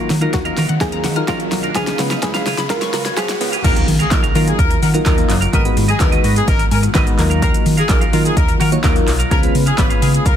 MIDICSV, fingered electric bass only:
0, 0, Header, 1, 2, 480
1, 0, Start_track
1, 0, Key_signature, -6, "minor"
1, 0, Tempo, 472441
1, 1782, Time_signature, 4, 2, 24, 8
1, 10531, End_track
2, 0, Start_track
2, 0, Title_t, "Fingered electric bass"
2, 0, Program_c, 0, 33
2, 102, Note_on_c, 0, 51, 103
2, 258, Note_off_c, 0, 51, 0
2, 342, Note_on_c, 0, 39, 104
2, 498, Note_off_c, 0, 39, 0
2, 581, Note_on_c, 0, 51, 96
2, 660, Note_off_c, 0, 51, 0
2, 702, Note_on_c, 0, 51, 96
2, 780, Note_off_c, 0, 51, 0
2, 820, Note_on_c, 0, 39, 105
2, 1061, Note_on_c, 0, 51, 108
2, 1076, Note_off_c, 0, 39, 0
2, 1217, Note_off_c, 0, 51, 0
2, 1302, Note_on_c, 0, 34, 95
2, 1458, Note_off_c, 0, 34, 0
2, 1540, Note_on_c, 0, 35, 96
2, 1697, Note_off_c, 0, 35, 0
2, 1781, Note_on_c, 0, 37, 112
2, 1937, Note_off_c, 0, 37, 0
2, 2020, Note_on_c, 0, 49, 109
2, 2177, Note_off_c, 0, 49, 0
2, 2262, Note_on_c, 0, 37, 115
2, 2418, Note_off_c, 0, 37, 0
2, 2500, Note_on_c, 0, 49, 100
2, 2578, Note_off_c, 0, 49, 0
2, 2619, Note_on_c, 0, 49, 97
2, 2698, Note_off_c, 0, 49, 0
2, 2981, Note_on_c, 0, 49, 104
2, 3137, Note_off_c, 0, 49, 0
2, 3221, Note_on_c, 0, 35, 100
2, 3378, Note_off_c, 0, 35, 0
2, 3461, Note_on_c, 0, 37, 99
2, 3618, Note_off_c, 0, 37, 0
2, 3702, Note_on_c, 0, 39, 115
2, 3858, Note_off_c, 0, 39, 0
2, 3941, Note_on_c, 0, 51, 103
2, 4098, Note_off_c, 0, 51, 0
2, 4183, Note_on_c, 0, 34, 97
2, 4339, Note_off_c, 0, 34, 0
2, 4422, Note_on_c, 0, 51, 107
2, 4578, Note_off_c, 0, 51, 0
2, 4662, Note_on_c, 0, 39, 110
2, 4818, Note_off_c, 0, 39, 0
2, 4901, Note_on_c, 0, 51, 107
2, 5057, Note_off_c, 0, 51, 0
2, 5143, Note_on_c, 0, 39, 103
2, 5299, Note_off_c, 0, 39, 0
2, 5381, Note_on_c, 0, 30, 105
2, 5537, Note_off_c, 0, 30, 0
2, 5622, Note_on_c, 0, 32, 115
2, 5778, Note_off_c, 0, 32, 0
2, 5862, Note_on_c, 0, 44, 116
2, 6018, Note_off_c, 0, 44, 0
2, 6103, Note_on_c, 0, 39, 106
2, 6259, Note_off_c, 0, 39, 0
2, 6341, Note_on_c, 0, 44, 100
2, 6498, Note_off_c, 0, 44, 0
2, 6581, Note_on_c, 0, 32, 104
2, 6738, Note_off_c, 0, 32, 0
2, 6821, Note_on_c, 0, 44, 103
2, 6977, Note_off_c, 0, 44, 0
2, 7063, Note_on_c, 0, 32, 99
2, 7219, Note_off_c, 0, 32, 0
2, 7301, Note_on_c, 0, 39, 107
2, 7614, Note_off_c, 0, 39, 0
2, 7782, Note_on_c, 0, 51, 116
2, 7938, Note_off_c, 0, 51, 0
2, 8023, Note_on_c, 0, 34, 107
2, 8179, Note_off_c, 0, 34, 0
2, 8262, Note_on_c, 0, 51, 107
2, 8418, Note_off_c, 0, 51, 0
2, 8502, Note_on_c, 0, 39, 105
2, 8658, Note_off_c, 0, 39, 0
2, 8743, Note_on_c, 0, 51, 108
2, 8899, Note_off_c, 0, 51, 0
2, 8983, Note_on_c, 0, 39, 103
2, 9139, Note_off_c, 0, 39, 0
2, 9223, Note_on_c, 0, 35, 101
2, 9378, Note_off_c, 0, 35, 0
2, 9463, Note_on_c, 0, 37, 124
2, 9618, Note_off_c, 0, 37, 0
2, 9702, Note_on_c, 0, 49, 108
2, 9858, Note_off_c, 0, 49, 0
2, 9944, Note_on_c, 0, 32, 105
2, 10099, Note_off_c, 0, 32, 0
2, 10181, Note_on_c, 0, 49, 100
2, 10338, Note_off_c, 0, 49, 0
2, 10422, Note_on_c, 0, 37, 100
2, 10531, Note_off_c, 0, 37, 0
2, 10531, End_track
0, 0, End_of_file